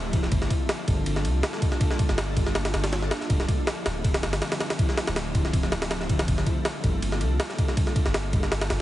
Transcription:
0.00 0.25 D1 medium
0.13 kick medium
0.13 ride medium
0.23 0.31 F1 loud
0.23 snare soft
0.32 0.49 G1 loud
0.32 1.23 G3 medium
0.32 1.23 A#3 medium
0.32 1.23 D4 medium
0.32 1.23 F4 medium
0.32 1.23 A4 medium
0.32 kick loud
0.32 ride medium
0.42 snare medium
0.50 kick loud
0.50 ride medium
0.69 snare loud
0.69 ride medium
0.88 1.26 G1 loud
0.88 kick medium
0.88 ride medium
1.06 ride medium
1.16 snare soft
1.25 1.42 C2 loud
1.25 ride medium
1.43 snare loud
1.43 ride medium
1.53 snare soft
1.62 kick loud
1.62 ride medium
1.72 snare soft
1.80 2.72 G3 medium
1.80 2.72 A#3 medium
1.80 2.72 D4 medium
1.80 2.72 F4 medium
1.80 2.72 A4 medium
1.80 kick loud
1.80 ride medium
1.91 snare soft
1.99 kick loud
1.99 ride medium
2.09 2.35 G1 medium
2.09 snare medium
2.18 snare loud
2.18 ride medium
2.37 2.73 G1 loud
2.37 kick medium
2.37 ride medium
2.46 snare soft
2.55 snare loud
2.55 ride medium
2.65 snare loud
2.65 ride medium
2.74 3.10 G1 medium
2.74 snare loud
2.74 ride medium
2.84 snare loud
2.84 ride medium
2.93 snare loud
2.93 ride medium
3.02 snare soft
3.11 snare loud
3.11 ride medium
3.21 snare soft
3.30 3.47 D1 loud
3.30 4.21 D3 medium
3.30 4.21 F3 medium
3.30 4.21 A3 medium
3.30 4.21 C4 medium
3.30 4.21 E4 medium
3.30 kick loud
3.30 ride medium
3.40 snare medium
3.49 kick loud
3.49 ride medium
3.67 snare loud
3.67 ride medium
3.86 4.25 D1 loud
3.86 snare loud
3.86 ride medium
4.04 kick medium
4.04 ride medium
4.14 snare loud
4.14 ride medium
4.23 4.40 G1 loud
4.23 snare loud
4.23 ride medium
4.33 snare loud
4.33 ride medium
4.42 snare loud
4.42 ride medium
4.52 snare loud
4.52 ride medium
4.60 snare loud
4.60 ride medium
4.70 snare loud
4.70 ride medium
4.79 5.70 D3 medium
4.79 5.70 F3 medium
4.79 5.70 A3 medium
4.79 5.70 C4 medium
4.79 5.70 E4 medium
4.79 kick loud
4.79 ride medium
4.89 snare soft
4.97 snare loud
4.97 ride medium
5.07 5.34 D1 medium
5.07 snare loud
5.07 ride medium
5.16 snare loud
5.16 ride medium
5.35 5.71 D1 loud
5.35 kick loud
5.35 ride medium
5.45 snare soft
5.53 kick loud
5.53 ride medium
5.63 snare soft
5.72 6.21 D1 medium
5.72 snare loud
5.72 ride medium
5.82 snare loud
5.82 ride medium
5.91 snare loud
5.91 ride medium
6.01 snare soft
6.09 kick medium
6.09 ride medium
6.19 6.27 F1 loud
6.19 snare loud
6.19 ride medium
6.28 6.45 G1 loud
6.28 7.19 G3 medium
6.28 7.19 A#3 medium
6.28 7.19 D4 medium
6.28 7.19 F4 medium
6.28 7.19 A4 medium
6.28 kick loud
6.28 ride medium
6.38 snare medium
6.46 kick loud
6.46 ride medium
6.65 snare loud
6.65 ride medium
6.84 7.23 G1 loud
6.84 kick medium
6.84 ride medium
7.02 ride medium
7.12 snare soft
7.21 7.38 C2 loud
7.21 ride medium
7.40 snare loud
7.40 ride medium
7.50 snare soft
7.58 kick loud
7.58 ride medium
7.68 snare soft
7.77 8.68 G3 medium
7.77 8.68 A#3 medium
7.77 8.68 D4 medium
7.77 8.68 F4 medium
7.77 8.68 A4 medium
7.77 kick loud
7.77 ride medium
7.87 snare soft
7.96 kick loud
7.96 ride medium
8.06 8.32 G1 medium
8.06 snare medium
8.14 snare loud
8.14 ride medium
8.33 8.69 G1 loud
8.33 kick loud
8.33 ride medium
8.43 snare soft
8.52 snare loud
8.52 ride medium
8.61 snare loud
8.61 ride medium
8.70 8.81 G1 medium
8.70 snare loud
8.70 ride medium

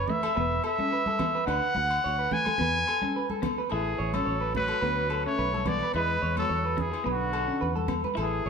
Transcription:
0.00 0.22 B4 medium
0.00 0.12 C#5 medium
0.08 0.28 A3 medium
0.08 0.64 E5 medium
0.08 low conga medium
0.23 0.35 A4 medium
0.23 low agogo medium
0.35 0.59 E1 loud
0.35 0.56 B3 medium
0.35 0.63 B4 medium
0.63 0.91 A4 medium
0.63 1.44 E5 medium
0.63 low agogo medium
0.79 0.98 C#4 medium
0.79 high conga medium
0.92 1.07 B4 medium
1.06 1.34 A4 medium
1.06 high conga medium
1.19 1.39 B3 medium
1.19 low conga medium
1.19 low agogo medium
1.35 1.48 B4 medium
1.46 1.60 D2 medium
1.46 1.66 D4 medium
1.46 1.75 B4 medium
1.46 2.35 F#5 loud
1.46 low agogo medium
1.75 1.98 D2 medium
1.75 2.03 F#5 medium
1.75 high conga medium
1.90 low agogo medium
2.04 2.27 D2 medium
2.04 2.18 C#5 medium
2.19 2.45 B4 medium
2.31 2.51 A3 medium
2.31 3.44 G#5 loud
2.31 low conga medium
2.45 2.59 A4 medium
2.45 high conga medium
2.45 low agogo medium
2.58 2.82 E2 medium
2.58 2.78 B3 medium
2.58 2.87 B4 medium
2.58 low conga medium
2.87 3.15 A4 medium
2.87 low agogo medium
3.02 3.21 C#4 medium
3.02 high conga medium
3.16 3.30 B4 medium
3.30 3.57 A4 medium
3.30 high conga medium
3.42 3.61 B3 medium
3.42 low conga medium
3.42 low agogo medium
3.58 3.71 B4 medium
3.69 3.94 A1 medium
3.69 3.90 E4 medium
3.69 4.15 G#4 medium
3.69 3.98 A4 medium
3.69 low agogo soft
3.74 4.18 E3 medium
3.99 4.21 A1 medium
3.99 4.24 C#5 medium
4.13 4.55 F#3 medium
4.13 4.33 C#4 medium
4.13 4.55 A4 medium
4.13 high conga medium
4.13 low agogo medium
4.26 4.70 A1 medium
4.26 4.40 C#5 medium
4.41 4.68 B4 medium
4.55 5.22 F#3 medium
4.55 4.75 A3 medium
4.55 5.22 B4 loud
4.55 low conga medium
4.68 4.81 A4 medium
4.68 low agogo medium
4.81 5.26 D2 loud
4.81 5.01 B3 medium
4.81 5.09 B4 medium
5.10 5.37 A4 medium
5.10 low agogo medium
5.26 5.67 A3 medium
5.26 5.45 C#4 medium
5.26 5.69 C#5 medium
5.38 5.82 B1 loud
5.38 5.53 B4 medium
5.54 5.80 A4 medium
5.54 high conga medium
5.65 5.94 B3 medium
5.65 5.86 B3 medium
5.65 5.93 D5 medium
5.65 high conga medium
5.65 low conga medium
5.65 low agogo medium
5.80 5.93 B4 medium
5.80 high conga medium
5.93 6.16 E2 medium
5.93 6.34 G#3 medium
5.93 6.14 E4 medium
5.93 6.21 B4 medium
5.93 6.34 B4 medium
5.93 low agogo soft
6.22 6.44 E2 medium
6.22 6.48 C#5 medium
6.36 6.83 F#3 medium
6.36 6.55 B3 medium
6.36 6.82 A4 medium
6.36 high conga medium
6.36 low agogo medium
6.49 6.94 E2 medium
6.49 6.64 C#5 medium
6.65 6.91 B4 medium
6.77 7.07 G#4 medium
6.77 muted clean electric guitar stroke medium
6.77 low conga medium
6.81 7.08 E3 medium
6.92 muted clean electric guitar stroke medium
6.92 low agogo medium
7.04 7.50 B1 medium
7.04 7.24 B3 medium
7.04 7.32 B4 medium
7.08 7.87 D3 medium
7.08 7.88 F#4 medium
7.33 7.60 A4 medium
7.33 low agogo medium
7.48 7.67 C#4 medium
7.61 8.06 E2 medium
7.61 7.75 B4 medium
7.75 8.03 A4 medium
7.75 high conga medium
7.88 8.08 B3 medium
7.88 high conga medium
7.88 low conga medium
7.88 low agogo medium
8.04 8.17 B4 medium
8.04 high conga medium
8.15 8.39 A1 medium
8.15 8.35 E4 medium
8.15 8.44 A4 medium
8.15 low agogo medium
8.21 8.50 E3 medium
8.21 8.50 G#4 medium
8.46 8.50 A1 medium
8.46 8.50 C#5 medium

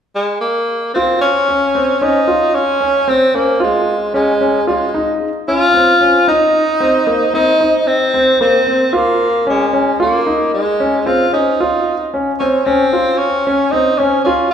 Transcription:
0.15 0.40 G#3 medium
0.41 0.90 A#3 medium
0.94 1.19 C4 medium
0.94 1.29 F4 medium
1.21 2.04 C#4 medium
1.48 1.65 C#4 medium
1.75 1.91 C4 medium
2.02 2.18 C#4 medium
2.02 2.56 D#4 medium
2.28 2.61 F4 medium
2.54 3.10 C#4 medium
2.81 2.97 C#4 medium
3.08 3.24 C4 medium
3.08 3.36 C4 medium
3.34 3.61 A#3 medium
3.34 3.51 C#4 medium
3.60 4.12 G#3 medium
3.60 3.94 F4 medium
4.14 4.64 G#3 medium
4.14 4.31 C#4 medium
4.41 4.57 C#4 medium
4.67 5.17 G#3 medium
4.67 4.84 F4 medium
4.94 5.28 D#4 medium
5.48 5.64 C#4 medium
5.48 6.24 F4 loud
5.74 5.91 C4 medium
6.01 6.17 C#4 medium
6.28 6.61 D#4 medium
6.28 7.30 D#4 medium
6.80 6.97 C4 medium
7.07 7.23 A#3 medium
7.34 7.50 C4 medium
7.34 7.89 D#4 loud
7.61 7.94 D#4 medium
7.87 8.40 C4 medium
8.14 8.31 C4 medium
8.41 8.57 A#3 medium
8.41 8.96 C4 medium
8.67 8.83 C4 medium
8.93 9.47 A#3 medium
8.93 9.26 F4 medium
9.47 9.98 G#3 medium
9.47 9.63 C#4 medium
9.73 9.90 C#4 medium
10.00 10.51 A#3 medium
10.00 10.17 F4 medium
10.27 10.60 D#4 medium
10.54 11.08 G#3 medium
10.80 10.97 C#4 medium
11.06 11.23 C4 medium
11.06 11.33 F4 medium
11.33 11.50 C#4 medium
11.33 12.09 D#4 medium
11.60 11.94 F4 medium
12.14 12.30 C#4 medium
12.39 12.57 C4 medium
12.39 12.67 C#4 medium
12.65 13.19 C4 medium
12.65 12.83 C#4 medium
12.93 13.26 F4 medium
13.18 13.72 C#4 medium
13.47 13.63 C#4 medium
13.71 13.90 C4 medium
13.71 13.99 D#4 medium
13.98 14.24 C#4 medium
13.98 14.17 C#4 medium
14.24 14.50 C#4 medium
14.24 14.54 F4 medium

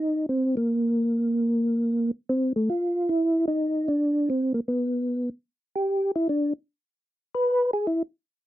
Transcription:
0.00 0.26 D#4 medium
0.29 0.55 C4 medium
0.57 2.11 A#3 medium
2.29 2.53 C4 medium
2.56 2.69 A3 medium
2.70 3.10 F4 medium
3.09 3.45 E4 medium
3.48 3.89 D#4 medium
3.88 4.29 D4 medium
4.30 4.53 C4 medium
4.54 4.60 A#3 medium
4.68 5.29 B3 medium
5.76 6.11 G4 medium
6.16 6.28 E4 medium
6.29 6.53 D4 medium
7.35 7.71 B4 loud
7.73 7.86 G#4 medium
7.87 8.03 E4 medium

